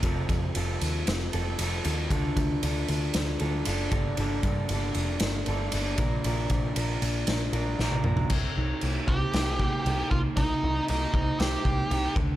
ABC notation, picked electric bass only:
X:1
M:4/4
L:1/8
Q:1/4=116
K:Cdor
V:1 name="Picked electric bass" clef=bass
F,,, F,, F,,, E,, F,,, F,,, F,,, E,, | D,, D,, D,, D,, D,, D,, ^F,,, G,,, | G,,, G,, G,,, F,,, G,,, G,,, G,,, B,,, | B,,, B,,, B,,, B,,, B,,, B,,, B,,, B,,, |
C,, C,, C,, C,, C,,2 C,, C,, | C,, C,, C,, C,, C,, C,, C,, D,, |]